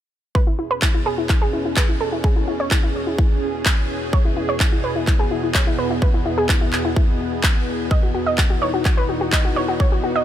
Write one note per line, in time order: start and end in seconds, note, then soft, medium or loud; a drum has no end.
0.35 10.24 E2 medium
0.35 10.24 B2 medium
0.35 4.09 C#4 medium
0.35 7.87 G#4 medium
0.35 0.41 B4 medium
0.35 kick loud
0.47 0.53 E4 medium
0.59 0.65 E4 medium
0.71 0.77 B4 medium
0.82 0.89 E4 medium
0.82 kick loud
0.82 clap loud
0.94 1.00 E4 medium
1.06 1.12 G#4 medium
1.18 1.24 E4 medium
1.29 1.36 E4 medium
1.29 kick loud
1.29 clap medium
1.42 1.48 G#4 medium
1.53 1.59 E4 medium
1.65 1.71 E4 medium
1.76 1.83 B4 medium
1.76 kick loud
1.76 clap loud
1.89 1.95 E4 medium
2.01 2.07 A4 medium
2.12 2.19 E4 medium
2.24 2.30 G#4 medium
2.24 kick loud
2.36 2.42 E4 medium
2.48 2.54 E4 medium
2.60 2.66 C#5 medium
2.71 2.78 E4 medium
2.71 kick loud
2.71 clap loud
2.83 2.89 E4 medium
3.07 3.13 E4 medium
3.18 3.25 E4 medium
3.18 kick loud
3.66 kick loud
3.66 clap loud
4.13 7.87 B3 medium
4.13 4.19 C#5 medium
4.13 kick loud
4.25 4.31 E4 medium
4.37 4.43 E4 medium
4.49 4.55 C#5 medium
4.60 4.67 E4 medium
4.60 kick loud
4.60 clap loud
4.72 4.78 E4 medium
4.84 4.90 B4 medium
4.96 5.02 E4 medium
5.07 5.14 E4 medium
5.07 kick loud
5.07 clap medium
5.19 5.26 G#4 medium
5.31 5.37 E4 medium
5.43 5.49 E4 medium
5.54 5.61 C#5 medium
5.54 kick loud
5.54 clap loud
5.67 5.73 E4 medium
5.79 5.85 B4 medium
5.91 5.97 E4 medium
6.02 6.08 B4 medium
6.02 kick loud
6.14 6.20 E4 medium
6.26 6.32 E4 medium
6.38 6.44 G#4 medium
6.49 6.56 E4 medium
6.49 kick loud
6.49 clap loud
6.61 6.67 E4 medium
6.73 clap medium
6.85 6.91 E4 medium
6.96 7.03 E4 medium
6.96 kick loud
7.43 kick loud
7.43 clap loud
7.91 10.24 D#4 medium
7.91 10.24 F#4 medium
7.91 7.97 D#5 medium
7.91 kick loud
8.03 8.09 F#4 medium
8.15 8.21 F#4 medium
8.27 8.33 D#5 medium
8.38 8.44 F#4 medium
8.38 kick loud
8.38 clap loud
8.50 8.56 F#4 medium
8.62 8.68 C#5 medium
8.74 8.80 F#4 medium
8.85 8.92 F#4 medium
8.85 kick loud
8.85 clap medium
8.97 9.04 B4 medium
9.09 9.15 F#4 medium
9.21 9.27 F#4 medium
9.32 9.39 D#5 medium
9.32 kick loud
9.32 clap loud
9.45 9.51 F#4 medium
9.56 9.63 C#5 medium
9.68 9.74 F#4 medium
9.80 9.86 C#5 medium
9.80 kick loud
9.92 9.98 F#4 medium
10.04 10.10 F#4 medium
10.16 10.22 D#5 medium